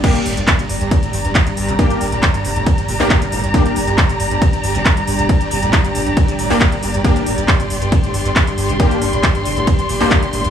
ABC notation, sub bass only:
X:1
M:4/4
L:1/16
Q:1/4=137
K:Gm
V:1 name="Sub bass" clef=bass
z2 G,,, G,,, z2 G,,, G,,, z2 G,,, G,,, z2 G,,, G,,, | z2 G,,, G,,, z2 G,,, G,,, z2 G,,, G,,, z2 G,,, G,,, | z2 G,,, G,,, z2 G,,, G,,, z2 G,,, G,,, z2 G,,, G,,, | z2 G,,, G,,, z2 G,,, G,,, z2 G,,, G,,, z2 G,,, G,,, |
z2 G,,, G,,, z2 G,,, G,,, z2 G,,, G,,, z2 G,,, G,,, | z2 G,,, G,,, z2 G,,, G,,, z2 G,,, G,,, z2 G,,, G,,, |]